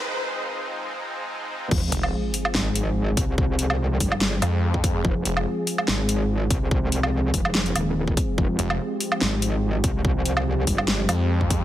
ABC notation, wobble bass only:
X:1
M:4/4
L:1/8
Q:"Swing 16ths" 1/4=144
K:Fm
V:1 name="Wobble bass" clef=bass
z8 | F,,, z3 A,,,3 C,,- | C,,3 G,,,2 z3 | F,,, z3 A,,,3 C,,- |
C,,3 F,,,2 E,,,2 z | F,,, z3 A,,,3 C,,- | C,,3 G,,,2 z3 |]